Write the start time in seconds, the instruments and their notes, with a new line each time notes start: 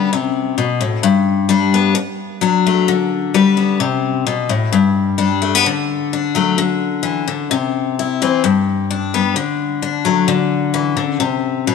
Already playing: steel-string acoustic guitar B4
0.13 steel-string acoustic guitar C3
0.58 steel-string acoustic guitar B2
0.81 steel-string acoustic guitar A2
1.03 steel-string acoustic guitar G2
1.49 steel-string acoustic guitar G3 D4
1.74 steel-string acoustic guitar B3
1.95 muted steel-string acoustic guitar stroke
2.41 steel-string acoustic guitar F#3 D4
2.67 steel-string acoustic guitar A3
2.88 steel-string acoustic guitar D3
3.34 steel-string acoustic guitar G3 B4
3.57 steel-string acoustic guitar B3
3.80 steel-string acoustic guitar C3
4.27 steel-string acoustic guitar B2
4.49 steel-string acoustic guitar A2
4.72 steel-string acoustic guitar G2
5.18 steel-string acoustic guitar G3 D4
5.42 steel-string acoustic guitar A3
5.55 steel-string acoustic guitar B3
5.66 steel-string acoustic guitar D3
6.13 steel-string acoustic guitar D4
6.35 steel-string acoustic guitar F#3 A3
6.58 steel-string acoustic guitar D3
7.03 steel-string acoustic guitar E3
7.28 steel-string acoustic guitar D3
7.51 steel-string acoustic guitar C3
7.99 steel-string acoustic guitar E4
8.22 steel-string acoustic guitar E3 C4
8.44 steel-string acoustic guitar G2
8.90 steel-string acoustic guitar D4
9.14 steel-string acoustic guitar G3 B3
9.36 steel-string acoustic guitar D3
9.82 steel-string acoustic guitar D4
10.05 steel-string acoustic guitar F#3 A3
10.28 steel-string acoustic guitar D3
10.74 steel-string acoustic guitar E3
10.97 steel-string acoustic guitar D3
11.20 steel-string acoustic guitar C3
11.67 steel-string acoustic guitar B2